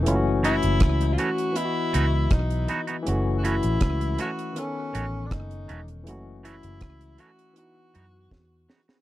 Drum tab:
HH |x-xxxxxxx-x-xxxx|x-xxxxxxx-x-xxxx|x-xxxxxxx-x-----|
SD |----r-------r---|----r-------r---|----r-------o-oo|
BD |----o-------o---|----o-------o---|----o-------o---|